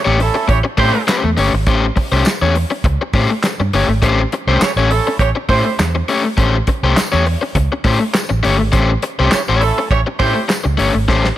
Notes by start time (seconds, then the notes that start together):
0.05 A1 A3 C#4 G4 C#5
0.20 A3 C#4 E4 A4, muted overdriven electric guitar stroke, open hi-hat
0.34 muted overdriven electric guitar stroke
0.48 A1 C#4 E4 G4 C#5, muted overdriven electric guitar stroke, kick, closed hi-hat
0.64 muted overdriven electric guitar stroke
0.77 A2 A3 C4 C#4 E4 G4 C5, kick, open hi-hat
0.95 muted overdriven electric guitar stroke
1.07 A3 C#4 G4 C5, snare, clap, closed hi-hat, tambourine
1.24 E2, muted overdriven electric guitar stroke
1.37 G1 A3 C#4 G4 C#5, open hi-hat
1.54 G#1, muted overdriven electric guitar stroke
1.67 A1 A3 C#4 G4 C5, kick, closed hi-hat
1.96 muted overdriven electric guitar stroke, kick, open hi-hat
2.12 C2 A3 C#4 G4 C5
2.25 muted overdriven electric guitar stroke, snare, clap, closed hi-hat, tambourine
2.42 E2 A3 C#4 G4 C#5
2.55 muted overdriven electric guitar stroke, open hi-hat
2.71 muted overdriven electric guitar stroke
2.84 C#2, muted overdriven electric guitar stroke, kick, closed hi-hat
3.01 muted overdriven electric guitar stroke
3.13 A2 A3 C#4 G4 C5, kick, open hi-hat
3.31 muted overdriven electric guitar stroke
3.43 muted overdriven electric guitar stroke, snare, clap, closed hi-hat, tambourine
3.60 G2, muted overdriven electric guitar stroke
3.73 G1 A3 C#4 G4 C#5, open hi-hat
3.88 G#1, muted overdriven electric guitar stroke
4.02 A1 A3 C#4 G4 C5, kick, closed hi-hat
4.32 muted overdriven electric guitar stroke, closed hi-hat
4.47 C2 A3 C4 C#4 E4 G4 C5
4.61 C#4 E4 G4 C#5, muted overdriven electric guitar stroke, snare, clap, closed hi-hat, tambourine
4.76 A1 A3 C#4 G4 C#5
4.90 A3 C#4 E4 A4, muted overdriven electric guitar stroke, open hi-hat
5.07 muted overdriven electric guitar stroke
5.19 A1 C#4 E4 G4 C#5, muted overdriven electric guitar stroke, kick, closed hi-hat
5.35 muted overdriven electric guitar stroke
5.49 A2 A3 C4 C#4 E4 G4 C5, kick, open hi-hat
5.65 muted overdriven electric guitar stroke
5.79 E2, muted overdriven electric guitar stroke, snare, clap, closed hi-hat, tambourine
5.95 muted overdriven electric guitar stroke
6.08 A3 C#4 G4 C#5, open hi-hat
6.25 muted overdriven electric guitar stroke
6.37 A1 A3 C#4 G4 C5, kick, closed hi-hat
6.67 muted overdriven electric guitar stroke, kick, closed hi-hat
6.83 C2 A3 C#4 G4 C5
6.96 muted overdriven electric guitar stroke, snare, clap, closed hi-hat, tambourine
7.12 E2 A3 C#4 G4 C#5
7.26 muted overdriven electric guitar stroke, open hi-hat
7.41 muted overdriven electric guitar stroke
7.55 C#2, muted overdriven electric guitar stroke, kick, closed hi-hat
7.72 muted overdriven electric guitar stroke
7.84 A2 A3 C#4 G4 C5, kick, open hi-hat
8.01 muted overdriven electric guitar stroke
8.14 muted overdriven electric guitar stroke, snare, clap, closed hi-hat, tambourine
8.29 A1, muted overdriven electric guitar stroke
8.43 G1 A3 C#4 G4 C#5, open hi-hat
8.58 G#1, muted overdriven electric guitar stroke
8.72 A1 A3 C#4 G4 C5, kick, closed hi-hat
9.02 muted overdriven electric guitar stroke, closed hi-hat
9.19 C2 A3 C4 C#4 E4 G4 C5
9.31 C#4 E4 G4 C#5, muted overdriven electric guitar stroke, snare, clap, closed hi-hat, tambourine
9.49 A1 A3 C#4 G4 C#5
9.60 A3 C#4 E4 A4, muted overdriven electric guitar stroke, open hi-hat
9.78 muted overdriven electric guitar stroke
9.91 A1 C#4 E4 G4 C#5, muted overdriven electric guitar stroke, kick, closed hi-hat
10.07 muted overdriven electric guitar stroke
10.18 A2 A3 C4 C#4 E4 G4 C5, kick, open hi-hat
10.36 muted overdriven electric guitar stroke
10.48 muted overdriven electric guitar stroke, snare, clap, closed hi-hat, tambourine
10.64 C#2, muted overdriven electric guitar stroke
10.78 G1 A3 C#4 G4 C#5, open hi-hat
10.95 G#1, muted overdriven electric guitar stroke
11.08 A1 A3 C#4 G4 C5, kick, snare
11.24 snare